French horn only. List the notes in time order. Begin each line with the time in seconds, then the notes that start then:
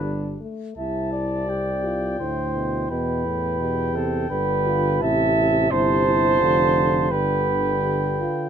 0.03 G3
0.40 A3
0.77 E4
1.49 G4
1.84 F4
2.20 E4
3.60 G4
4.30 G4
4.67 F4
5.03 E4
5.72 E4
6.06 E4
6.39 F4
7.12 D4
7.84 G4
8.20 F4